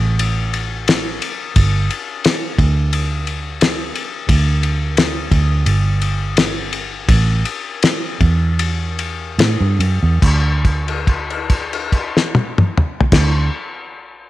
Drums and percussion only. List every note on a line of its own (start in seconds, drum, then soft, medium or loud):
0.19 ride medium
0.54 ride medium
0.88 snare loud
0.88 ride medium
1.22 ride medium
1.56 kick loud
1.56 ride medium
1.90 ride medium
2.24 snare loud
2.24 ride medium
2.59 kick medium
2.59 ride medium
2.93 ride medium
3.27 ride medium
3.61 snare loud
3.61 ride medium
3.95 ride medium
4.29 kick loud
4.29 ride medium
4.63 ride medium
4.97 snare loud
4.97 ride medium
5.32 kick medium
5.32 ride medium
5.66 ride medium
6.02 ride medium
6.37 snare loud
6.37 ride medium
6.73 ride medium
7.09 kick loud
7.09 ride medium
7.45 ride medium
7.83 snare loud
7.83 ride medium
8.21 kick medium
8.21 ride medium
8.59 ride medium
8.99 ride medium
9.39 snare loud
9.39 ride medium
9.80 ride medium
10.22 kick loud
10.22 crash medium
10.65 kick medium
10.65 crash soft
10.88 crash soft
11.07 kick medium
11.07 crash soft
11.30 crash soft
11.50 kick medium
11.50 crash medium
11.73 crash medium
11.92 kick medium
11.92 crash medium
12.17 snare medium
12.35 high tom loud
12.58 mid tom loud
12.78 mid tom loud
13.01 floor tom loud
13.12 kick loud
13.12 snare medium
13.12 crash loud